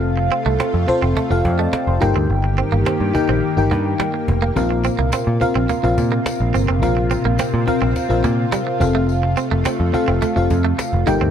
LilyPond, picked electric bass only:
\new Staff \with { instrumentName = "Picked electric bass" } { \clef bass \time 4/4 \key f \mixolydian \tempo 4 = 106 f,,8. c,16 r16 f,16 r16 f,,16 r16 f,,16 f,8 r16 f,,16 g,,16 d,16 | g,,8. g,,16 r16 g,16 r16 bes,,16 r16 g,,16 g,8 r8 f,,8 | bes,,8. c,16 r16 bes,16 r16 bes,,16 r16 bes,,16 bes,8 r16 bes,,16 g,,16 f,,16 | bes,,8. bes,,16 r16 bes,16 r16 bes,,16 r16 bes,,16 bes,8 r8 f,,8~ |
f,,8. f,,16 r16 f,16 r16 f,,16 r16 f,,16 f,8 r16 f,,16 g,,16 d,16 | }